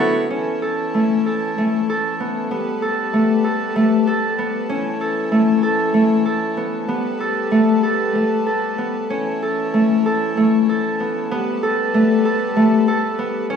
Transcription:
Already playing: D3 F#3 C#4 E4 A4 C#5
0.00 B3
0.30 E3 C#4 A4
0.62 A4
0.94 A3
1.26 A4
1.58 A3
1.90 A4
2.20 B3
2.51 G3 B3
2.82 A4
3.13 A3
3.44 A4
3.76 A3
4.07 A4
4.38 B3
4.68 E3 C#4
5.01 A4
5.32 A3
5.63 A4
5.94 A3
6.25 A4
6.57 B3
6.87 G3 B3
7.20 A4
7.51 A3
7.83 A4
8.15 A3
8.47 A4
8.78 B3
9.10 E3 C#4
9.43 A4
9.74 A3
10.06 A4
10.37 A3
10.69 A4
11.00 B3
11.31 G3 B3
11.63 A4
11.94 A3
12.25 A4
12.56 A3
12.88 A4
13.19 B3
13.50 E3 C#4 A4

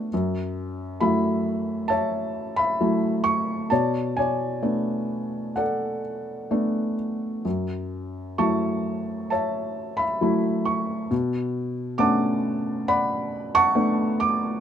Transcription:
Already playing: A3 B3 D4 F#4 A4 D5
0.14 F#2
1.00 F#3 A3 E4 E5 B5
1.88 C#5 E5 A5
2.56 E5 B5
2.81 F#3 A3 E4
3.24 C#6
3.70 B2 C#5 D5 A5
4.17 C#5 D5 G#5
4.62 A3 B3 D4
5.56 A4 D5 F#5
6.51 A3 B3 D4
7.45 F#2
8.38 F#3 A3 E4 E5 A5 C#6
9.30 C#5 E5 A5
9.97 E5 B5
10.21 F#3 A3 E4
10.65 C#6
11.11 B2
11.98 A3 B3 C#4 D4 F#5 A5 D6
12.88 D5 F#5 B5
13.55 F#5 A5 C#6
13.75 A3 B3 D4
14.20 D6

